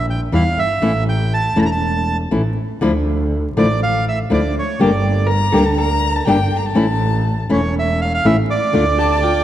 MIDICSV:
0, 0, Header, 1, 6, 480
1, 0, Start_track
1, 0, Key_signature, -1, "minor"
1, 0, Tempo, 495050
1, 792, Time_signature, 4, 2, 24, 8
1, 9152, End_track
2, 0, Start_track
2, 0, Title_t, "Violin"
2, 0, Program_c, 0, 40
2, 5129, Note_on_c, 0, 82, 79
2, 5480, Note_on_c, 0, 81, 77
2, 5495, Note_off_c, 0, 82, 0
2, 5590, Note_off_c, 0, 81, 0
2, 5595, Note_on_c, 0, 82, 94
2, 5971, Note_on_c, 0, 81, 76
2, 5985, Note_off_c, 0, 82, 0
2, 6084, Note_off_c, 0, 81, 0
2, 6090, Note_on_c, 0, 79, 83
2, 6358, Note_off_c, 0, 79, 0
2, 6383, Note_on_c, 0, 82, 47
2, 6454, Note_on_c, 0, 81, 70
2, 6468, Note_off_c, 0, 82, 0
2, 7165, Note_off_c, 0, 81, 0
2, 8713, Note_on_c, 0, 81, 80
2, 8828, Note_off_c, 0, 81, 0
2, 8834, Note_on_c, 0, 81, 79
2, 8949, Note_off_c, 0, 81, 0
2, 8955, Note_on_c, 0, 79, 69
2, 9152, Note_off_c, 0, 79, 0
2, 9152, End_track
3, 0, Start_track
3, 0, Title_t, "Bandoneon"
3, 0, Program_c, 1, 23
3, 99, Note_on_c, 1, 79, 66
3, 201, Note_off_c, 1, 79, 0
3, 333, Note_on_c, 1, 77, 67
3, 569, Note_off_c, 1, 77, 0
3, 571, Note_on_c, 1, 76, 71
3, 1008, Note_off_c, 1, 76, 0
3, 1057, Note_on_c, 1, 79, 77
3, 1292, Note_off_c, 1, 79, 0
3, 1296, Note_on_c, 1, 81, 83
3, 1534, Note_off_c, 1, 81, 0
3, 1540, Note_on_c, 1, 82, 75
3, 1552, Note_off_c, 1, 82, 0
3, 1571, Note_on_c, 1, 81, 71
3, 1591, Note_off_c, 1, 81, 0
3, 1604, Note_on_c, 1, 82, 74
3, 1647, Note_off_c, 1, 82, 0
3, 1664, Note_on_c, 1, 81, 66
3, 2103, Note_off_c, 1, 81, 0
3, 3475, Note_on_c, 1, 74, 75
3, 3688, Note_off_c, 1, 74, 0
3, 3713, Note_on_c, 1, 77, 80
3, 3926, Note_off_c, 1, 77, 0
3, 3961, Note_on_c, 1, 76, 75
3, 4062, Note_off_c, 1, 76, 0
3, 4202, Note_on_c, 1, 74, 69
3, 4411, Note_off_c, 1, 74, 0
3, 4449, Note_on_c, 1, 73, 68
3, 4655, Note_off_c, 1, 73, 0
3, 4672, Note_on_c, 1, 74, 67
3, 5108, Note_off_c, 1, 74, 0
3, 7297, Note_on_c, 1, 73, 70
3, 7512, Note_off_c, 1, 73, 0
3, 7554, Note_on_c, 1, 76, 80
3, 7762, Note_off_c, 1, 76, 0
3, 7771, Note_on_c, 1, 77, 70
3, 7879, Note_off_c, 1, 77, 0
3, 7894, Note_on_c, 1, 77, 85
3, 8006, Note_on_c, 1, 76, 82
3, 8011, Note_off_c, 1, 77, 0
3, 8113, Note_off_c, 1, 76, 0
3, 8243, Note_on_c, 1, 74, 83
3, 9152, Note_off_c, 1, 74, 0
3, 9152, End_track
4, 0, Start_track
4, 0, Title_t, "Hollow-body jazz guitar"
4, 0, Program_c, 2, 26
4, 5106, Note_on_c, 2, 70, 80
4, 5351, Note_off_c, 2, 70, 0
4, 5355, Note_on_c, 2, 69, 81
4, 5602, Note_off_c, 2, 69, 0
4, 5606, Note_on_c, 2, 70, 80
4, 6216, Note_off_c, 2, 70, 0
4, 6216, Note_on_c, 2, 69, 80
4, 6522, Note_off_c, 2, 69, 0
4, 8711, Note_on_c, 2, 67, 65
4, 8956, Note_on_c, 2, 65, 68
4, 8964, Note_off_c, 2, 67, 0
4, 9152, Note_off_c, 2, 65, 0
4, 9152, End_track
5, 0, Start_track
5, 0, Title_t, "Nylon-string guitar"
5, 0, Program_c, 3, 24
5, 314, Note_on_c, 3, 52, 69
5, 321, Note_on_c, 3, 55, 76
5, 324, Note_on_c, 3, 64, 77
5, 401, Note_off_c, 3, 52, 0
5, 405, Note_off_c, 3, 55, 0
5, 406, Note_off_c, 3, 64, 0
5, 793, Note_on_c, 3, 52, 76
5, 796, Note_on_c, 3, 57, 77
5, 799, Note_on_c, 3, 61, 78
5, 807, Note_on_c, 3, 64, 81
5, 880, Note_off_c, 3, 52, 0
5, 881, Note_off_c, 3, 57, 0
5, 883, Note_off_c, 3, 61, 0
5, 886, Note_off_c, 3, 64, 0
5, 1512, Note_on_c, 3, 52, 71
5, 1515, Note_on_c, 3, 61, 74
5, 1519, Note_on_c, 3, 57, 77
5, 1521, Note_on_c, 3, 64, 71
5, 1602, Note_off_c, 3, 52, 0
5, 1603, Note_off_c, 3, 61, 0
5, 1605, Note_off_c, 3, 57, 0
5, 1606, Note_off_c, 3, 64, 0
5, 2240, Note_on_c, 3, 57, 71
5, 2243, Note_on_c, 3, 52, 64
5, 2247, Note_on_c, 3, 61, 71
5, 2250, Note_on_c, 3, 64, 70
5, 2331, Note_off_c, 3, 57, 0
5, 2332, Note_off_c, 3, 52, 0
5, 2334, Note_off_c, 3, 61, 0
5, 2336, Note_off_c, 3, 64, 0
5, 2725, Note_on_c, 3, 50, 73
5, 2731, Note_on_c, 3, 53, 81
5, 2736, Note_on_c, 3, 57, 72
5, 2736, Note_on_c, 3, 62, 75
5, 2739, Note_on_c, 3, 64, 73
5, 2814, Note_off_c, 3, 50, 0
5, 2818, Note_off_c, 3, 53, 0
5, 2820, Note_off_c, 3, 57, 0
5, 2820, Note_off_c, 3, 62, 0
5, 2822, Note_off_c, 3, 64, 0
5, 3459, Note_on_c, 3, 50, 67
5, 3460, Note_on_c, 3, 53, 70
5, 3461, Note_on_c, 3, 57, 74
5, 3465, Note_on_c, 3, 62, 73
5, 3475, Note_on_c, 3, 64, 68
5, 3543, Note_off_c, 3, 50, 0
5, 3544, Note_off_c, 3, 53, 0
5, 3544, Note_off_c, 3, 57, 0
5, 3546, Note_off_c, 3, 62, 0
5, 3551, Note_off_c, 3, 64, 0
5, 4168, Note_on_c, 3, 50, 70
5, 4171, Note_on_c, 3, 53, 69
5, 4176, Note_on_c, 3, 57, 67
5, 4181, Note_on_c, 3, 62, 80
5, 4187, Note_on_c, 3, 64, 69
5, 4258, Note_off_c, 3, 50, 0
5, 4259, Note_off_c, 3, 53, 0
5, 4262, Note_off_c, 3, 57, 0
5, 4264, Note_off_c, 3, 62, 0
5, 4267, Note_off_c, 3, 64, 0
5, 4648, Note_on_c, 3, 50, 68
5, 4657, Note_on_c, 3, 55, 74
5, 4659, Note_on_c, 3, 58, 85
5, 4662, Note_on_c, 3, 67, 91
5, 4663, Note_on_c, 3, 62, 81
5, 4737, Note_off_c, 3, 50, 0
5, 4741, Note_off_c, 3, 55, 0
5, 4743, Note_off_c, 3, 58, 0
5, 4744, Note_off_c, 3, 62, 0
5, 4744, Note_off_c, 3, 67, 0
5, 5356, Note_on_c, 3, 50, 70
5, 5360, Note_on_c, 3, 55, 71
5, 5367, Note_on_c, 3, 58, 73
5, 5368, Note_on_c, 3, 67, 79
5, 5370, Note_on_c, 3, 62, 68
5, 5450, Note_off_c, 3, 50, 0
5, 5452, Note_off_c, 3, 55, 0
5, 5455, Note_off_c, 3, 58, 0
5, 5456, Note_off_c, 3, 67, 0
5, 5457, Note_off_c, 3, 62, 0
5, 6075, Note_on_c, 3, 50, 75
5, 6077, Note_on_c, 3, 55, 72
5, 6084, Note_on_c, 3, 62, 90
5, 6090, Note_on_c, 3, 58, 77
5, 6092, Note_on_c, 3, 67, 78
5, 6166, Note_off_c, 3, 50, 0
5, 6167, Note_off_c, 3, 55, 0
5, 6171, Note_off_c, 3, 62, 0
5, 6174, Note_off_c, 3, 58, 0
5, 6175, Note_off_c, 3, 67, 0
5, 6544, Note_on_c, 3, 52, 73
5, 6547, Note_on_c, 3, 61, 87
5, 6551, Note_on_c, 3, 57, 90
5, 6557, Note_on_c, 3, 64, 97
5, 6639, Note_off_c, 3, 52, 0
5, 6641, Note_off_c, 3, 61, 0
5, 6643, Note_off_c, 3, 57, 0
5, 6646, Note_off_c, 3, 64, 0
5, 7266, Note_on_c, 3, 52, 75
5, 7272, Note_on_c, 3, 57, 69
5, 7274, Note_on_c, 3, 64, 82
5, 7276, Note_on_c, 3, 61, 74
5, 7360, Note_off_c, 3, 52, 0
5, 7363, Note_off_c, 3, 57, 0
5, 7364, Note_off_c, 3, 64, 0
5, 7365, Note_off_c, 3, 61, 0
5, 7997, Note_on_c, 3, 52, 66
5, 7999, Note_on_c, 3, 57, 77
5, 8005, Note_on_c, 3, 61, 78
5, 8009, Note_on_c, 3, 64, 86
5, 8086, Note_off_c, 3, 52, 0
5, 8087, Note_off_c, 3, 57, 0
5, 8090, Note_off_c, 3, 61, 0
5, 8092, Note_off_c, 3, 64, 0
5, 8464, Note_on_c, 3, 50, 77
5, 8473, Note_on_c, 3, 57, 75
5, 8479, Note_on_c, 3, 62, 73
5, 8480, Note_on_c, 3, 65, 85
5, 8559, Note_off_c, 3, 50, 0
5, 8564, Note_off_c, 3, 57, 0
5, 8567, Note_off_c, 3, 62, 0
5, 8567, Note_off_c, 3, 65, 0
5, 9152, End_track
6, 0, Start_track
6, 0, Title_t, "Double bass"
6, 0, Program_c, 4, 43
6, 0, Note_on_c, 4, 34, 78
6, 280, Note_off_c, 4, 34, 0
6, 312, Note_on_c, 4, 40, 78
6, 513, Note_off_c, 4, 40, 0
6, 561, Note_on_c, 4, 31, 53
6, 780, Note_off_c, 4, 31, 0
6, 786, Note_on_c, 4, 33, 85
6, 1476, Note_off_c, 4, 33, 0
6, 1514, Note_on_c, 4, 28, 74
6, 2207, Note_off_c, 4, 28, 0
6, 2249, Note_on_c, 4, 33, 67
6, 2451, Note_off_c, 4, 33, 0
6, 2731, Note_on_c, 4, 38, 80
6, 3417, Note_off_c, 4, 38, 0
6, 3453, Note_on_c, 4, 33, 72
6, 4137, Note_off_c, 4, 33, 0
6, 4175, Note_on_c, 4, 38, 72
6, 4375, Note_off_c, 4, 38, 0
6, 4660, Note_on_c, 4, 31, 86
6, 5338, Note_off_c, 4, 31, 0
6, 5370, Note_on_c, 4, 38, 74
6, 6049, Note_off_c, 4, 38, 0
6, 6081, Note_on_c, 4, 31, 83
6, 6283, Note_off_c, 4, 31, 0
6, 6325, Note_on_c, 4, 31, 61
6, 6560, Note_off_c, 4, 31, 0
6, 6565, Note_on_c, 4, 33, 91
6, 7245, Note_off_c, 4, 33, 0
6, 7278, Note_on_c, 4, 28, 83
6, 7964, Note_off_c, 4, 28, 0
6, 7996, Note_on_c, 4, 33, 79
6, 8200, Note_off_c, 4, 33, 0
6, 8470, Note_on_c, 4, 38, 84
6, 9152, Note_off_c, 4, 38, 0
6, 9152, End_track
0, 0, End_of_file